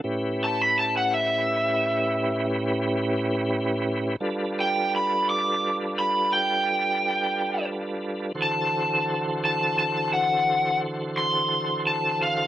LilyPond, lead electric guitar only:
\new Staff \with { instrumentName = "Lead electric guitar" } { \time 12/8 \key d \mixolydian \tempo 4. = 58 r8 a''16 b''16 a''16 fis''16 e''2 r2 r8 | r8 g''8 b''8 d'''4 b''8 g''2 r4 | a''4. a''8 a''8 fis''4 r8 c'''4 a''8 f''8 | }